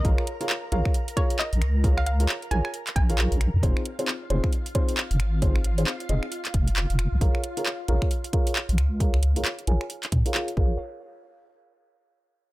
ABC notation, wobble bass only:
X:1
M:4/4
L:1/16
Q:"Swing 16ths" 1/4=134
K:Bbm
V:1 name="Wobble bass" clef=bass
B,,, z4 z B,,, z6 B,,, D,,2- | D,,4 z2 B,,, z3 B,,,3 B,,,2 F,, | F,,, z4 z F,,, z6 F,,, A,,,2- | A,,,4 z2 F,,, z3 F,,,3 F,,,2 C,, |
B,,, z4 z B,,, z6 B,,, D,,2- | D,,4 z2 B,,, z3 B,, z3 B,,,2 | z16 |]